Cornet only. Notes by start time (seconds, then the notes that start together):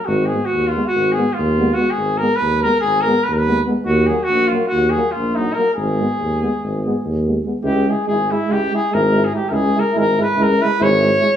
0.05 F#4
0.26 G#4
0.45 F#4
0.68 F4
0.87 F#4
1.12 G#4
1.33 F4
1.74 F#4
1.91 G#4
2.18 A#4
2.35 B4
2.62 A#4
2.81 G#4
3.01 A#4
3.23 B4
3.33 A#4
3.38 B4
3.86 F#4
4.06 G#4
4.23 F#4
4.48 F4
4.68 F#4
4.90 G#4
5.11 F4
5.35 D#4
5.54 A#4
5.74 G#4
7.65 G4
7.90 G#4
8.07 G#4
8.31 E4
8.52 G4
8.75 G#4
8.94 A#4
9.24 G#4
9.35 G4
9.49 A#4
9.53 G#4
9.79 A#4
9.99 A#4
10.23 B4
10.43 A#4
10.62 B4
10.83 C#5